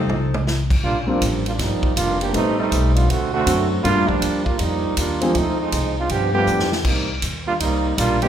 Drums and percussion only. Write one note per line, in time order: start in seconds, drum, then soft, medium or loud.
0.09 mid tom medium
0.34 mid tom medium
0.47 snare medium
0.70 kick medium
0.70 crash medium
0.84 kick soft
1.21 kick soft
1.21 hi-hat pedal soft
1.21 ride medium
1.46 ride soft
1.59 kick soft
1.59 snare soft
1.59 ride medium
1.83 kick medium
1.96 kick soft
1.96 hi-hat pedal medium
1.96 ride medium
2.21 ride soft
2.34 kick soft
2.34 ride medium
2.72 kick soft
2.72 hi-hat pedal medium
2.72 ride medium
2.96 ride medium
3.09 kick soft
3.09 ride medium
3.47 kick soft
3.47 hi-hat pedal medium
3.47 ride medium
3.84 kick soft
3.84 ride medium
4.09 kick soft
4.22 kick soft
4.22 hi-hat pedal soft
4.22 ride medium
4.46 kick medium
4.59 kick soft
4.59 ride medium
4.97 kick soft
4.97 hi-hat pedal medium
4.97 ride medium
5.21 ride soft
5.35 kick soft
5.35 ride medium
5.72 kick soft
5.72 hi-hat pedal medium
5.72 ride medium
6.09 kick soft
6.09 ride medium
6.47 hi-hat pedal medium
6.59 snare medium
6.72 snare medium
6.85 kick medium
6.85 crash medium
7.22 kick soft
7.22 hi-hat pedal medium
7.22 ride medium
7.60 kick soft
7.60 ride medium
7.98 kick soft
7.98 hi-hat pedal medium
7.98 ride medium
8.22 ride soft